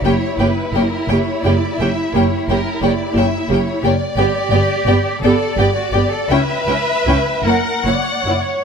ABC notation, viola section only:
X:1
M:12/8
L:1/8
Q:3/8=57
K:F#phr
V:1 name="Viola section"
[^A,G] [A,G] [A,G] [A,G] [A,G] [A,G] [A,G] [A,G] [A,G] [A,G] [A,G] [A,G] | [B,G] [B,G] [B,G] [B,G] [B,G] [B,G] [CE] [CE] [CE] [^A,E] [A,E] [A,E] |]